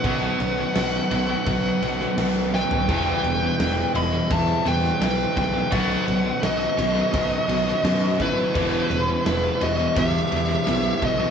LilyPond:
<<
  \new Staff \with { instrumentName = "Lead electric guitar" } { \time 4/4 \key e \minor \tempo 4 = 85 fis''2.~ fis''8 g''8~ | g''4. b''8 a''8 g''8 g''8 g''8 | fis''4 dis''2~ dis''8 b'8~ | b'4. dis''8 e''4. dis''8 | }
  \new Staff \with { instrumentName = "Lead electric guitar" } { \time 4/4 \key e \minor b'2.~ b'8 b'8~ | b'4. dis''8 e''8 b'8 b'8 b'8 | b'4 fis'2~ fis'8 e'8~ | e'4. fis'8 g'4. fis'8 | }
  \new Staff \with { instrumentName = "Overdriven electric guitar" } { \clef bass \time 4/4 \key e \minor <b, dis fis b dis'>4 <b, dis fis b dis'>8 <b, dis fis b dis'>8 <b, dis fis b dis'>4 <b, dis fis b dis'>8 <b, dis fis b dis'>8 | <e g b e'>4 <e g b e'>8 <e g b e'>8 <e g b e'>4 <e g b e'>8 <e g b e'>8 | <b, dis fis b dis'>4 <b, dis fis b dis'>8 <b, dis fis b dis'>8 <b, dis fis b dis'>4 <b, dis fis b dis'>8 <b, dis fis b dis'>8 | <e g b e'>4 <e g b e'>8 <e g b e'>8 <e g b e'>4 <e g b e'>8 <e g b e'>8 | }
  \new Staff \with { instrumentName = "Distorted electric guitar" } { \clef bass \time 4/4 \key e \minor <b, fis b>8 <b, fis>16 <b, fis>16 <b, fis>8 <b, fis>16 <b, fis>16 <b, fis>8 <b, fis>16 <b, fis>16 <b, fis>8 <b, fis>16 <b, fis>16 | <e, b, e>8 <e, b,>16 <e, b,>16 <e, b,>8 <e, b,>16 <e, b,>16 <e, b,>8 <e, b,>16 <e, b,>16 <e, b,>8 <e, b,>16 <e, b,>16 | <b, fis b>8 <b, fis>16 <b, fis>16 <b, fis>8 <b, fis>16 <b, fis>16 <b, fis>8 <b, fis>16 <b, fis>16 <b, fis>8 <b, fis>16 <b, fis>16 | <e, b, e>8 <e, b,>16 <e, b,>16 <e, b,>8 <e, b,>16 <e, b,>16 <e, b,>8 <e, b,>16 <e, b,>16 <e, b,>8 <e, b,>16 <e, b,>16 | }
  \new Staff \with { instrumentName = "Picked electric bass" } { \clef bass \time 4/4 \key e \minor b,,8 b,,8 b,,8 b,,8 b,,8 b,,8 b,,4 | e,,8 e,,8 e,,8 e,,8 e,8 e,8 b,,8 b,,8 | b,,8 b,,8 b,,8 b,,8 b,,8 b,,8 fis,4 | e,,8 e,,8 e,,8 e,,8 e,8 e,8 b,,8 b,,8 | }
  \new DrumStaff \with { instrumentName = "Drums" } \drummode { \time 4/4 <cymc bd>8 cymc8 <cymc sn>8 cymc8 <cymc bd>8 cymc16 sn16 <cymc sn>8 sn16 tomfh16 | <cymc bd>8 cymc8 <cymc sn>8 cymc8 <cymc bd>8 cymc16 sn16 <cymc sn>8 <cymc bd sn>8 | <cymc bd>8 cymc8 <cymc sn>8 cymc8 <cymc bd>8 cymc16 sn16 <cymc sn>8 <cymc bd sn>8 | <cymc bd>8 cymc8 <cymc sn>8 cymc8 <cymc bd>8 cymc16 sn16 <cymc sn>8 <cymc bd>8 | }
>>